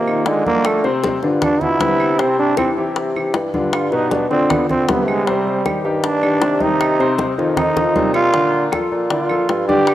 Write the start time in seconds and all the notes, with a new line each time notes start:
Already playing: C3 A#3
0.08 D#3 D#4 F4, high conga, claves
0.26 D3 G#3, high bongo, low bongo, high conga
0.46 F3 A#3 F4 A4, high conga
0.65 A3, high bongo, high conga, claves
0.84 C3 C4 C5, high bongo, high conga
1.04 high bongo, high conga
1.23 G2 D3 D4 F4, high bongo, high conga
1.42 D4, high bongo, high conga, low conga, claves
1.61 B2 D3 D4 E4 F4, high bongo, high conga, low conga
1.80 C3 D3 B3 B4, high bongo, low bongo, high conga
2.00 claves
2.19 C3 C4 C5, high bongo, high conga
2.39 D4, high conga
2.57 E3 C4 E4 G4, high bongo, high conga, claves
2.77 C3 E3 E4 G4, high conga
2.96 high bongo, high conga
3.16 E3 E4 G4, high conga, claves
3.34 G2, high bongo, low bongo, high conga
3.54 D3 D4 F4, high conga
3.73 F4, high bongo, high conga, claves
3.92 B2 B3 D#4 B4, high bongo, high conga
4.11 D4, high bongo, high conga
4.30 D3 C4 D4 F4, high bongo, high conga
4.50 B3, high bongo, high conga, low conga, claves
4.69 D3 C4 D4 F4, high bongo, high conga, low conga
4.89 C3 D3 B3 B4, high bongo, low bongo, high conga
5.08 G#3, claves
5.27 C3 G3 C4 C5, high bongo, high conga
5.47 high conga
5.65 D#3 D#4 G4, high bongo, high conga, claves
5.84 G2 D#3 D#4 G4, high conga
6.03 D4, high bongo, high conga
6.23 D#3 D4 G4, high conga, claves
6.42 C3, high bongo, low bongo, high conga
6.60 D#3 D#4 G4, high conga
6.80 high bongo, high conga, claves
6.99 C3 C4 C5, high bongo, high conga
7.18 high bongo, high conga
7.38 F2 D#3 D#4 F4, high bongo, high conga
7.57 D#4, high bongo, high conga, low conga, claves
7.76 D#3 D#4 F4, high bongo, high conga, low conga
7.95 A#2 C3 C4 C5, high conga
8.14 F4, low bongo, claves
8.34 D3 D4 D5, high bongo, high conga
8.53 high conga
8.72 F3 F4 A4, high bongo, high conga, claves
8.91 A#2, high conga
9.10 D3 D4 F4 D5, high bongo, high conga
9.29 F3 F4 A4, high conga, claves
9.49 G2, high bongo, low bongo, high conga
9.68 D3 D4 G4 D5, high conga
9.87 high bongo, high conga, claves